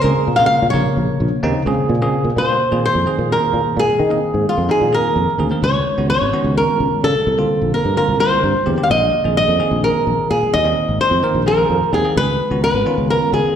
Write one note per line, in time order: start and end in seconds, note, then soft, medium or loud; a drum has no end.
0.01 0.13 C#2 medium
0.01 0.31 C#3 medium
0.01 0.31 A#3 medium
0.01 0.31 C4 medium
0.01 0.31 G#4 medium
0.01 0.39 A#4 medium
0.16 muted fretless electric bass stroke soft
0.27 0.46 A#2 medium
0.36 0.66 C#3 medium
0.36 0.66 A#3 medium
0.36 0.66 C4 medium
0.36 0.66 A#4 medium
0.36 0.45 F5 medium
0.46 0.70 F5 medium
0.62 0.72 A#2 medium
0.70 0.83 A#1 medium
0.70 1.27 C3 medium
0.70 1.27 C#3 medium
0.70 1.27 A#3 medium
0.70 1.27 A#4 medium
0.70 2.07 C#5 medium
0.97 1.06 A#1 medium
1.20 1.30 A#1 medium
1.43 1.53 D#2 medium
1.43 1.61 C#3 medium
1.43 1.61 A#3 medium
1.43 1.61 C4 medium
1.43 1.61 D#4 loud
1.66 1.76 C#2 medium
1.66 1.93 C#3 medium
1.66 1.94 A#3 medium
1.66 1.94 C4 medium
1.66 1.94 G#4 medium
1.78 muted fretless electric bass stroke soft
1.89 2.08 A#2 medium
2.02 2.29 C#3 medium
2.02 2.29 A#3 medium
2.02 2.29 C4 medium
2.02 2.29 G#4 medium
2.24 2.34 A#2 medium
2.36 2.55 A#2 medium
2.36 2.84 C5 medium
2.71 2.91 A#2 medium
2.71 2.98 D#3 medium
2.71 2.98 A#3 medium
2.71 2.99 C4 medium
2.71 2.99 G#4 medium
2.86 3.32 C5 medium
2.95 3.04 F2 medium
3.06 3.78 D#3 medium
3.06 3.78 A#3 medium
3.06 3.78 C4 medium
3.06 3.79 G#4 medium
3.18 3.37 A#2 medium
3.32 3.79 A#4 medium
3.53 3.63 A#2 medium
3.65 muted fretless electric bass stroke soft
3.77 3.86 A#2 medium
3.77 4.49 G#4 medium
3.88 muted fretless electric bass stroke soft
3.99 4.18 D#3 medium
4.11 4.56 D#3 medium
4.11 4.56 A#3 medium
4.11 4.56 C4 medium
4.11 4.56 G#4 medium
4.34 4.44 G#2 medium
4.49 4.69 F4 medium
4.58 4.67 F2 medium
4.69 4.87 D#3 medium
4.69 4.87 A#3 medium
4.69 4.87 C4 medium
4.69 4.88 D#4 medium
4.69 4.94 G#4 medium
4.81 5.09 A#2 medium
4.92 5.28 D#3 medium
4.92 5.29 A#3 medium
4.92 5.29 C4 medium
4.92 5.29 G#4 medium
4.92 5.42 A#4 medium
5.16 5.25 F2 medium
5.28 muted fretless electric bass stroke soft
5.39 5.49 D2 medium
5.39 5.48 D#3 medium
5.39 5.48 A#3 medium
5.39 5.48 C4 medium
5.39 5.49 G#4 medium
5.50 5.62 D#3 medium
5.50 5.63 A#3 medium
5.50 5.63 C4 medium
5.50 5.63 A#4 medium
5.62 5.81 C#2 medium
5.62 6.07 C#5 medium
5.97 6.17 C#2 medium
5.97 6.25 D#3 medium
5.97 6.25 B3 medium
5.97 6.25 C#4 medium
5.97 6.25 F#4 medium
6.10 6.57 C#5 medium
6.21 6.31 G#1 medium
6.33 7.05 D#3 medium
6.33 7.05 B3 medium
6.33 7.05 C#4 medium
6.33 7.05 F#4 medium
6.44 6.63 C#2 medium
6.57 7.00 A#4 medium
6.80 6.89 C#2 medium
6.92 muted fretless electric bass stroke soft
7.03 7.13 C#3 medium
7.03 7.74 A4 medium
7.15 muted fretless electric bass stroke soft
7.27 7.45 C2 medium
7.38 7.83 D3 medium
7.38 7.83 A#3 medium
7.38 7.83 C4 medium
7.38 7.83 F4 medium
7.61 7.71 A#1 medium
7.74 7.96 A#4 medium
7.85 7.94 G2 medium
7.97 8.14 D3 medium
7.97 8.15 A#3 medium
7.97 8.14 C4 medium
7.97 8.15 F4 medium
7.97 8.20 A#4 medium
8.08 8.37 C2 medium
8.19 8.55 D3 medium
8.19 8.56 A#3 medium
8.19 8.56 C4 medium
8.19 8.56 F4 medium
8.19 8.69 C5 medium
8.43 8.52 G2 medium
8.55 muted fretless electric bass stroke soft
8.66 8.76 E2 medium
8.66 8.75 D3 medium
8.66 8.75 A#3 medium
8.66 8.75 C4 medium
8.66 8.75 G4 medium
8.77 8.89 D3 medium
8.77 8.89 A#3 soft
8.77 8.89 C4 soft
8.77 8.90 G4 medium
8.83 8.90 F5 medium
8.90 9.09 A#1 medium
8.90 9.36 D#5 medium
9.24 9.44 A#1 medium
9.24 9.51 D#3 medium
9.24 9.52 A#3 medium
9.24 9.52 C4 medium
9.24 9.52 G#4 medium
9.37 9.80 D#5 medium
9.48 9.57 F2 medium
9.59 10.31 D#3 medium
9.59 10.31 A#3 medium
9.59 10.32 C4 medium
9.59 10.32 G#4 medium
9.71 9.90 A#1 medium
9.84 10.27 A#4 medium
10.07 10.16 A#1 medium
10.18 muted fretless electric bass stroke soft
10.30 10.40 A#2 medium
10.30 10.54 G#4 medium
10.43 muted fretless electric bass stroke soft
10.54 10.72 D#2 medium
10.54 11.00 D#5 medium
10.65 11.10 D#3 medium
10.65 11.10 A#3 medium
10.65 11.10 C4 medium
10.65 11.10 D#4 medium
10.89 10.98 G#1 medium
11.01 11.43 C5 medium
11.11 11.20 F2 medium
11.23 11.41 D#3 medium
11.23 11.41 A#3 medium
11.23 11.41 C4 medium
11.23 11.41 A#4 medium
11.34 11.63 A#1 medium
11.46 11.82 D#3 medium
11.46 11.82 A#3 medium
11.46 11.82 C4 medium
11.46 11.82 G#4 medium
11.46 11.90 A#4 medium
11.70 11.79 F2 medium
11.81 muted fretless electric bass stroke soft
11.93 12.02 D#2 medium
11.93 12.02 D#3 medium
11.93 12.02 A#3 medium
11.93 12.02 C4 medium
11.93 12.02 G#4 medium
11.93 12.17 G#4 medium
12.04 12.16 D#3 medium
12.04 12.16 A#3 medium
12.04 12.16 C4 medium
12.04 12.16 G#4 medium
12.16 12.35 C#2 medium
12.16 12.62 B4 medium
12.51 12.70 C#2 medium
12.51 12.78 D#3 medium
12.51 12.78 B3 medium
12.51 12.78 C#4 medium
12.51 12.78 F#4 medium
12.64 13.06 B4 medium
12.74 12.83 G#1 medium
12.86 13.56 D#3 medium
12.86 13.56 B3 medium
12.86 13.56 C#4 medium
12.86 13.56 F4 medium
12.98 13.16 C#2 medium
13.10 13.31 A#4 medium
13.32 13.42 C#2 medium
13.32 13.56 G#4 medium
13.44 muted fretless electric bass stroke soft